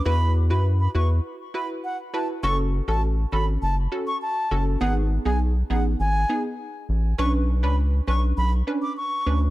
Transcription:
<<
  \new Staff \with { instrumentName = "Flute" } { \time 4/4 \key fis \minor \tempo 4 = 101 b''8 r16 b''16 r16 b''16 cis'''16 r8. b''16 r16 fis''16 r16 a''16 r16 | cis'''16 r8 a''16 r8 b''16 r16 a''16 r8 cis'''16 a''8. r16 | fis''16 r8 gis''16 r8 fis''16 r16 gis''8. r4 r16 | cis'''16 r8 b''16 r8 cis'''16 r16 b''16 r8 d'''16 cis'''8. r16 | }
  \new Staff \with { instrumentName = "Synth pluck" } { \time 4/4 \key fis \minor <e' fis' b'>8. <e' fis' b'>16 r8 <e' fis' b'>16 r8. <e' fis' b'>16 r8. <e' fis' b'>8 | <cis' fis' a'>8. <cis' fis' a'>16 r8 <cis' fis' a'>16 r8. <cis' fis' a'>16 r8. <cis' fis' a'>8 | <b dis' gis'>8. <b dis' gis'>16 r8 <b dis' gis'>16 r8. <b dis' gis'>16 r4 r16 | <cis' d' b'>8. <cis' d' b'>16 r8 <cis' d' b'>16 r8. <cis' d' b'>16 r8. <cis' d' b'>8 | }
  \new Staff \with { instrumentName = "Analog synth bass" } { \clef bass \time 4/4 \key fis \minor e,8. fis,8. e,8 r2 | fis,,8. a,,8. gis,,8 fis,,8 r4 fis,,8 | gis,,8. b,,8. a,,8 gis,,8 r4 a,,8 | b,,8. cis,8. b,,8 b,,8 r4 d,8 | }
>>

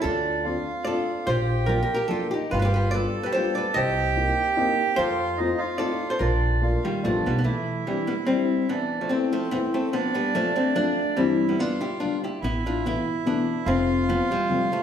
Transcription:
<<
  \new Staff \with { instrumentName = "Accordion" } { \time 3/4 \key bes \major \tempo 4 = 146 d'4 f'2 | g'2~ g'8 r8 | f'4 a'2 | g'2. |
f'4 ees'8 f'4. | d'4 f'4 d'4 | \key c \major e'2. | d'4 c'2 |
d'2. | e'4 f'4. r8 | e'2. | f'2. | }
  \new Staff \with { instrumentName = "Hollow-body jazz guitar" } { \time 3/4 \key bes \major << { a'2 d''4 | c''4 \tuplet 3/2 { bes'8 bes'8 bes'8 } a'8 g'8 | b'32 b'32 b'16 b'8 d''8. b'16 c''8 d''8 | ees''2~ ees''8 r8 |
c''2 d''8. c''16 | bes'4. g8 \tuplet 3/2 { a8. b8 b16 } | \key c \major a4 g8 b8 c'4 | b8. a16 c'8 a8 b8 c'8 |
b8 b8 a8 c'8 d'4 | c'8. b16 d'8 g'8 f'8 g'8 | e'8 f'8 e'4 d'4 | c'4 b8 g4 a8 | } \\ { f'2 a'4 | f'4 \tuplet 3/2 { f'8 r8 g'8 } f'8 ees'8 | g'16 g'16 g'8 b'8. g'16 g'8 b'8 | c''2~ c''8 r8 |
a'2 a'8. a'16 | f'4. ees8 f8 g16 r16 | e4 e8 g8 g4 | e8. f16 a8 f8 e8 a8 |
f8 g8 f8 a8 a4 | g8. g16 b8 e'8 d'8 e'8 | b8 d'8 b4 b4 | a4 f8 e4 f8 | } >> }
  \new Staff \with { instrumentName = "Upright piano" } { \time 3/4 \key bes \major r4 <a c' d' f'>8 r8 <a c' d' f'>8 r8 | r4 <f bes d' f'>8 r8 <f bes d' f'>8 r8 | r4 <g b d' f'>8 r8 <g b d' f'>8 r8 | r4 <bes c' ees' g'>8 r8 <bes c' ees' g'>8 r8 |
r4 <a c' ees' f'>8 r8 <a c' ees' f'>8 r8 | r4 <a bes d' f'>8 r8 <g b d' f'>8 r8 | \key c \major r4 <g c' d' e'>8 r8 <g c' d' e'>8 r8 | r4 <a b c' e'>8 r8 <a b c' e'>8 r8 |
r4 <f a c' d'>8 r8 <f a c' d'>8 r8 | <g, e g c' e'>4 <d g b d'>8 r8 <d g b d'>8 r8 | r4 <b, e a b>8 r8 <b, e a b>8 r8 | r4 <c f a c'>8 r8 <c f a c'>8 r8 | }
  \new Staff \with { instrumentName = "Upright bass" } { \clef bass \time 3/4 \key bes \major d,2 r4 | bes,,2 r4 | g,,2 r4 | c,2 r4 |
f,2 r4 | bes,,2 a,,8 b,,8 | \key c \major r2. | r2. |
r2. | r2. | a,,2 r4 | f,,2 r4 | }
>>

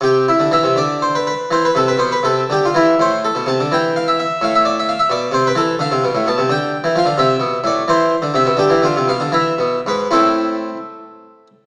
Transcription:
<<
  \new Staff \with { instrumentName = "Harpsichord" } { \time 6/8 \key c \major \tempo 4. = 83 g'8 e'8 e''8 d''8 c''16 b'16 b'8 | c''16 b'16 a'16 b'16 c''16 b'16 a'8 g'16 f'16 e'8 | c''8 a'8 a''8 g''8 f''16 e''16 e''8 | f''16 e''16 d''16 e''16 f''16 e''16 d''8 c''16 b'16 a'8 |
\key a \minor f''4 a''8 g''4 f''8 | e''4 d''8 c''4 e''8 | g'8 f'8 f''8 e''4 b'8 | a'2~ a'8 r8 | }
  \new Staff \with { instrumentName = "Harpsichord" } { \clef bass \time 6/8 \key c \major c8. d16 e16 c16 d4. | e8 c8 b,8 c8 d8 e8 | a,8. b,16 c16 d16 e4. | a,4. b,8 c8 e8 |
\key a \minor d16 c16 b,16 a,16 b,16 c16 d8. e16 f16 d16 | c8 b,8 a,8 e8. d16 c16 b,16 | d16 e16 d16 c16 b,16 d16 e8 b,8 gis,8 | <a, c' e'>4. r4. | }
>>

